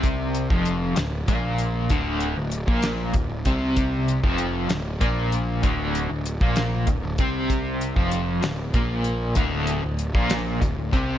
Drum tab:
HH |x-x-x-x-x-x-|x-x-x-x-x-x-|x-x-x-x-x-x-|x-x-x-x-x-x-|
SD |------o-----|------o-----|------o-----|------o-----|
BD |o--o----o---|o----o--o-o-|o--o----o---|o----o--o-o-|

HH |x-x-x-x-x-x-|x-x-x-x-x-x-|
SD |------o-----|------o-----|
BD |o--o----o---|o----o--o-o-|